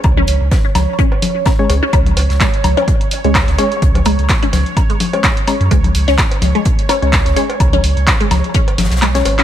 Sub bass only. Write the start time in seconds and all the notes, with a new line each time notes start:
0.04 C#2
0.28 C#2
0.41 C#2
0.75 C#2
1.70 C#2
1.93 C#2
2.17 C#2
2.30 C#2
2.64 C#2
3.24 C#2
3.48 C#2
3.82 C#2
4.06 C#2
4.19 C#2
4.53 C#2
5.61 F#2
5.71 C#2
5.95 C#2
6.08 C#2
6.42 C#2
7.02 C#2
7.26 C#2
7.60 C#2
7.84 C#2
7.97 C#2
8.31 C#2
8.78 G#1
8.91 B1
9.25 G#1